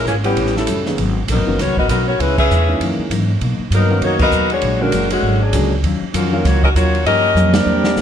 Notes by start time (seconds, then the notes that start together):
0.05 G#1 A#2 E3 G#3 A#3 C#4 E4 G#4, hi-hat pedal
0.23 E3 G3 B3 C#4 G4 F#5, ride
0.37 A1 A2 G3 C#4 F#4, ride
0.46 snare
0.56 G3 C#4 E4 A4, snare
0.67 F#1 A2 G3 C#4 F#4, hi-hat pedal, ride
0.86 D#3 A#3 B3 C#4 G#4, snare
0.97 G#1 G#2 F#3 B3, ride
1.02 C#4
1.28 A#1 G#2 F#3 B3 C#4 D#4 A#4, hi-hat pedal, ride
1.39 G#1
1.47 F#1 D#3 A#3 B3 C#4 F#4
1.58 C#2 G#2 F#3 B3 F#4 A#4 C#5, snare, ride
1.62 B3 C#4
1.69 B1
1.77 G#1 B3 F#4 A#4 D#5, kick
1.89 B1 G#2 F#3 B3 C#4 F#4 A#4 D#5, hi-hat pedal, ride
2.07 B3 F#4 A#4 C#5
2.19 C#2 C#3 G#3 B3 C#4 E4 B4, ride
2.38 C#4 G#4 B4 E5, kick, crash
2.51 E2 C#3 G#3 B3 E4, hi-hat pedal
2.68 D#3 E3 G#3 A#3 C#4
2.80 F#2 E3 A#3 D#4, ride
2.99 muted upright bass stroke
3.10 F#2 G#2 E3 A#3 D#4, hi-hat pedal, ride
3.41 B2 F#3 A#3 D#4, ride
3.59 muted upright bass stroke
3.70 G2 B2 F#3 A#3 D#4, hi-hat pedal, ride
3.75 B3 D#4 A#4
3.90 D#3 A#3 B3 C#4 F#4
4.01 F#2 B2 F#3 A#3 D#4 F#4 C#5, ride
4.19 B3 F#4 A#4 D#5, kick, crash
4.32 D#2 B2 F#3 A#3 D#4, hi-hat pedal
4.50 G#3 D4 F#4 C#5, ride
4.62 A#1 A#2 F#3 G#3 D4, ride
4.81 D3 G#3 A#3 C#4 D4 F#4 A#4
4.92 F#1 A#2 F#3 G#3 D4, hi-hat pedal, ride
5.10 D3 G#3 C#4 F#4, ride
5.22 G#1 A#2 F#3 G#3
5.27 D4
5.41 F#3 C#4 D4 G#4
5.53 C#2 A#2 D3 F#3 G#3 A#3 C#4 D4 F#4, hi-hat pedal, ride
5.83 D#2 D#3 F#3 C#4 F4, ride
6.02 muted upright bass stroke
6.13 F2 D#3 F#3 C#4 F4 F#4 A#4, hi-hat pedal, ride
6.33 D#3 F#3 A#3 C#4 F4
6.44 C#2 D#3 F#3 A#3 C#4 F4 F#4 C#5, snare, ride
6.63 C#4 F#4 A#4 D#5, kick
6.75 D#2 D#3 F#3 A#3 C#4 F4 F#4 C#5, hi-hat pedal, ride
6.95 ride
7.05 G2 F3 A#3 C#4 G4 A#4 D#5, ride
7.09 C#4
7.35 F2 G2 F3 A#3 C#4, hi-hat pedal, high tom
7.52 G3 A#3 C4 D4 G4 A#4 D5, snare, ride
7.66 E2 C3 G3 A#3 E4
7.84 snare
7.96 G2 C3 G3 A#3 E4, snare, hi-hat pedal